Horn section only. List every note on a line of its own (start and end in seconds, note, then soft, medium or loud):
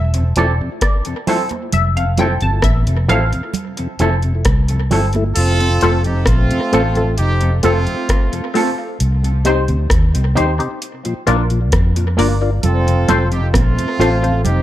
5.36 6.01 C4 loud
5.36 6.01 F4 loud
5.36 6.01 A4 loud
6.05 6.23 C4 medium
6.05 6.23 D#4 medium
6.05 6.23 G4 medium
6.27 7.14 A3 medium
6.27 7.14 C4 medium
6.27 7.14 F4 loud
7.18 7.55 C4 medium
7.18 7.55 D#4 medium
7.18 7.55 G4 loud
7.63 8.50 A3 medium
7.63 8.50 C4 medium
7.63 8.50 F4 loud
12.63 13.28 C4 loud
12.63 13.28 F4 loud
12.63 13.28 A4 loud
13.31 13.49 C4 medium
13.31 13.49 D#4 medium
13.31 13.49 G4 loud
13.54 14.41 A3 loud
13.54 14.41 C4 loud
13.54 14.41 F4 loud
14.44 14.62 C4 medium
14.44 14.62 D#4 loud
14.44 14.62 G4 medium